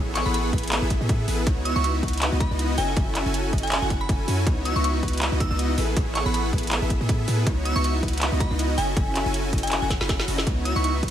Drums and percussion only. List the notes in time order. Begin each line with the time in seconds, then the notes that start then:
0.15 clap, closed hi-hat
0.34 closed hi-hat
0.53 kick, closed hi-hat
0.58 closed hi-hat
0.63 closed hi-hat
0.68 closed hi-hat
0.72 clap, closed hi-hat
0.90 kick, closed hi-hat
1.09 kick, closed hi-hat
1.28 open hi-hat
1.47 kick, closed hi-hat
1.65 closed hi-hat
1.84 closed hi-hat
2.03 kick, closed hi-hat
2.08 closed hi-hat
2.13 closed hi-hat
2.17 closed hi-hat
2.22 clap, closed hi-hat
2.40 kick, closed hi-hat
2.59 closed hi-hat
2.78 open hi-hat
2.96 kick, closed hi-hat
3.15 clap, closed hi-hat
3.34 closed hi-hat
3.53 kick, closed hi-hat
3.58 closed hi-hat
3.63 closed hi-hat
3.67 closed hi-hat
3.72 clap, closed hi-hat
3.90 kick, closed hi-hat
4.09 kick, closed hi-hat
4.28 open hi-hat
4.47 kick, closed hi-hat
4.65 closed hi-hat
4.84 closed hi-hat
5.03 kick, closed hi-hat
5.08 closed hi-hat
5.13 closed hi-hat
5.17 closed hi-hat
5.22 clap, closed hi-hat
5.40 kick, closed hi-hat
5.59 closed hi-hat
5.78 open hi-hat
5.97 kick, closed hi-hat
6.15 clap, closed hi-hat
6.34 closed hi-hat
6.53 kick, closed hi-hat
6.58 closed hi-hat
6.63 closed hi-hat
6.67 closed hi-hat
6.71 clap, closed hi-hat
6.90 kick, closed hi-hat
7.09 kick, closed hi-hat
7.28 open hi-hat
7.47 kick, closed hi-hat
7.65 closed hi-hat
7.84 closed hi-hat
8.03 kick, closed hi-hat
8.08 closed hi-hat
8.13 closed hi-hat
8.17 closed hi-hat
8.22 clap, closed hi-hat
8.40 kick, closed hi-hat
8.59 closed hi-hat
8.78 open hi-hat
8.97 kick, closed hi-hat
9.15 clap, closed hi-hat
9.34 closed hi-hat
9.53 kick, closed hi-hat
9.58 closed hi-hat
9.63 closed hi-hat
9.67 closed hi-hat
9.72 clap, closed hi-hat
9.90 kick, snare, closed hi-hat
10.01 snare
10.09 kick, snare, closed hi-hat
10.20 snare
10.28 open hi-hat
10.38 snare
10.47 kick, closed hi-hat
10.65 closed hi-hat
10.84 closed hi-hat
11.03 kick, closed hi-hat